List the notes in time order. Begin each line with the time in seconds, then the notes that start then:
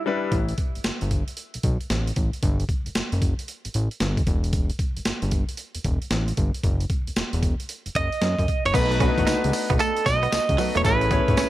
Already playing: G3 D4 E4 B4
0.06 G3 D4 E4 B4
0.32 A1, kick, closed hi-hat
0.48 closed hi-hat
0.58 kick, closed hi-hat
0.75 G1, closed hi-hat
0.84 G1, snare, closed hi-hat
1.01 G1, closed hi-hat
1.11 kick, closed hi-hat
1.28 closed hi-hat
1.37 closed hi-hat
1.54 B1, closed hi-hat
1.63 B1, kick, closed hi-hat
1.81 closed hi-hat
1.90 A1, snare, closed hi-hat
2.07 closed hi-hat
2.16 A1, kick, closed hi-hat
2.33 closed hi-hat
2.43 G1, kick, closed hi-hat
2.60 closed hi-hat
2.69 kick, closed hi-hat
2.86 F#1, closed hi-hat
2.95 F#1, snare, closed hi-hat
3.12 F#1, closed hi-hat
3.22 kick, closed hi-hat
3.39 closed hi-hat
3.48 closed hi-hat
3.65 A1, closed hi-hat
3.74 A1, closed hi-hat
3.91 closed hi-hat
4.00 G1, snare, closed hi-hat
4.17 kick, closed hi-hat
4.27 E1, kick, closed hi-hat
4.44 closed hi-hat
4.53 kick, closed hi-hat
4.70 closed hi-hat
4.79 kick, closed hi-hat
4.97 G1, closed hi-hat
5.05 G1, snare, closed hi-hat
5.22 G1, closed hi-hat
5.31 kick, closed hi-hat
5.49 closed hi-hat
5.57 closed hi-hat
5.75 E1, closed hi-hat
5.84 E1, kick, closed hi-hat
6.02 closed hi-hat
6.11 A1, snare, closed hi-hat
6.28 closed hi-hat
6.37 G1, kick, closed hi-hat
6.54 closed hi-hat
6.64 F#1, kick, closed hi-hat
6.80 closed hi-hat
6.90 kick, closed hi-hat
7.07 E1, closed hi-hat
7.16 E1, snare, closed hi-hat
7.33 E1, closed hi-hat
7.43 kick, closed hi-hat
7.60 closed hi-hat
7.69 closed hi-hat
7.86 F#1, closed hi-hat
7.95 F#1 D#5, kick, closed hi-hat
8.12 closed hi-hat
8.21 F#2, snare, closed hi-hat
8.39 F#2, kick, closed hi-hat
8.48 kick, closed hi-hat
8.65 F#1 C#5, closed hi-hat
8.74 B1 A3 B3 D#4 F#4 B4, kick, closed hi-hat, crash, tambourine
8.91 muted clean electric guitar stroke, closed hi-hat
9.00 A3 B3 C#4 D4 F#4 B4, kick, closed hi-hat
9.08 D#4
9.18 A1, kick, closed hi-hat
9.27 C#2 D#4, snare, closed hi-hat, tambourine
9.44 C#2, closed hi-hat
9.53 muted clean electric guitar stroke, open hi-hat, tambourine
9.70 B1 B3, kick, closed hi-hat
9.79 A3 A4, closed hi-hat, tambourine
9.97 closed hi-hat
10.06 B1 D#5, muted clean electric guitar stroke, kick, snare, closed hi-hat, tambourine
10.23 B3, closed hi-hat
10.32 C#2, muted clean electric guitar stroke, snare, closed hi-hat, tambourine
10.49 C#2, kick, closed hi-hat
10.58 F#3 A3 B3 D#4 F#4 B4, open hi-hat, tambourine
10.75 E1 A3 C#5, closed hi-hat
10.84 A1 A3 C#4 E4 G#4 B4 C#5, kick, closed hi-hat, tambourine
11.01 muted clean electric guitar stroke, closed hi-hat
11.11 A3 B3 C#4 E4 G#4 C#5, kick, closed hi-hat
11.28 G#1, kick, closed hi-hat
11.37 A1 C#4, snare, closed hi-hat, tambourine